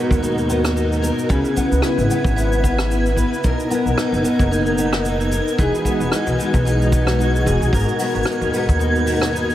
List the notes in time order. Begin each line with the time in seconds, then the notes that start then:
Already playing: G#2 B2 B3 D#4 F#4 A#4 G#6
0.11 D#2, kick, cabasa
0.22 D#4, cabasa
0.38 cabasa
0.50 B3, cabasa
0.65 cross-stick, cabasa
0.76 D#4, cabasa
0.92 cabasa
1.02 A#4, cabasa
1.19 cabasa
1.29 C#2 C#3 B3 E4 B4, kick, cabasa
1.45 cabasa
1.56 B3, kick, cabasa
1.72 C#2, cabasa
1.82 E4, cross-stick, cabasa
1.98 G#1, cabasa
2.10 B3, cabasa
2.24 G#1, kick, cabasa
2.36 E4, cabasa
2.52 cabasa
2.63 B3, kick, cabasa
2.79 cross-stick, cabasa
2.90 E4, cabasa
3.06 cabasa
3.17 B4, kick, cabasa
3.33 cabasa
3.44 B1 B2 D#4 A#4, kick, cabasa
3.60 cabasa
3.70 B3, cabasa
3.86 B1, cabasa
3.97 D#4, cross-stick, cabasa
4.12 F#1, cabasa
4.24 B3, cabasa
4.39 F#1, kick, cabasa
4.51 D#4, cabasa
4.66 cabasa
4.78 B3, cabasa
4.93 cross-stick, cabasa
5.05 D#4, cabasa
5.21 cabasa
5.31 A#4, cabasa
5.48 cabasa
5.58 E1 E3 G#3 F#4 G#4, kick, cabasa
5.75 cabasa
5.85 B3, kick, cabasa
6.00 E1, cabasa
6.12 D#4, cross-stick, cabasa
6.27 B1, cabasa
6.39 B3, cabasa
6.54 B1, kick, cabasa
6.65 D#4, cabasa
6.82 cabasa
6.92 B3, kick, cabasa
7.07 cross-stick, cabasa
7.19 D#4, cabasa
7.36 cabasa
7.46 E1 G#4, kick, cabasa
7.61 B1, cabasa
7.73 G#1 G#2 B2 A#4, kick, cabasa
7.79 cabasa
7.83 cabasa
7.88 cabasa
7.99 B3, open hi-hat, cabasa
8.15 G#1, cabasa
8.23 D#4, cross-stick, cabasa
8.27 cabasa
8.32 cabasa
8.41 D#2, cabasa
8.53 B3, open hi-hat, cabasa
8.69 D#2, kick, cabasa
8.79 D#4, cabasa
8.95 cabasa
9.06 B3, open hi-hat, cabasa
9.21 cross-stick, cabasa
9.33 D#4, cabasa
9.50 cabasa